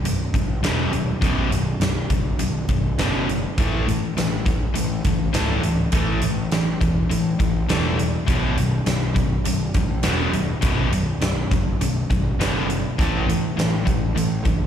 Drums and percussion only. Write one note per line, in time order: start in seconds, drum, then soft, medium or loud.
0.05 closed hi-hat loud
0.34 kick medium
0.34 closed hi-hat medium
0.64 snare loud
0.64 closed hi-hat medium
0.93 closed hi-hat medium
1.22 kick medium
1.22 closed hi-hat medium
1.52 closed hi-hat medium
1.81 snare loud
1.81 closed hi-hat medium
2.10 kick medium
2.10 closed hi-hat medium
2.39 closed hi-hat medium
2.68 kick medium
2.68 closed hi-hat medium
2.98 snare loud
2.98 closed hi-hat medium
3.29 closed hi-hat medium
3.58 kick loud
3.58 closed hi-hat medium
3.88 closed hi-hat medium
4.17 snare medium
4.17 closed hi-hat medium
4.46 kick medium
4.46 closed hi-hat medium
4.75 closed hi-hat medium
5.04 kick medium
5.04 closed hi-hat medium
5.34 snare loud
5.34 closed hi-hat medium
5.63 closed hi-hat medium
5.92 kick loud
5.92 closed hi-hat loud
6.21 closed hi-hat medium
6.51 snare medium
6.51 closed hi-hat medium
6.81 kick medium
6.81 closed hi-hat medium
7.11 closed hi-hat medium
7.40 kick medium
7.40 closed hi-hat medium
7.69 snare loud
7.69 closed hi-hat medium
7.99 closed hi-hat medium
8.28 kick loud
8.28 closed hi-hat medium
8.57 closed hi-hat medium
8.86 snare medium
8.86 closed hi-hat medium
9.16 kick medium
9.16 closed hi-hat medium
9.45 closed hi-hat medium
9.74 kick medium
9.74 closed hi-hat medium
10.03 snare loud
10.03 closed hi-hat loud
10.33 closed hi-hat medium
10.62 kick loud
10.62 closed hi-hat loud
10.92 closed hi-hat medium
11.21 snare loud
11.21 closed hi-hat medium
11.51 kick medium
11.51 closed hi-hat medium
11.81 closed hi-hat medium
12.11 kick medium
12.11 closed hi-hat medium
12.41 snare loud
12.41 closed hi-hat medium
12.70 closed hi-hat medium
12.99 kick loud
12.99 closed hi-hat medium
13.29 closed hi-hat medium
13.59 snare loud
13.59 closed hi-hat medium
13.87 kick medium
13.87 closed hi-hat medium
14.17 closed hi-hat medium
14.45 kick medium
14.45 closed hi-hat medium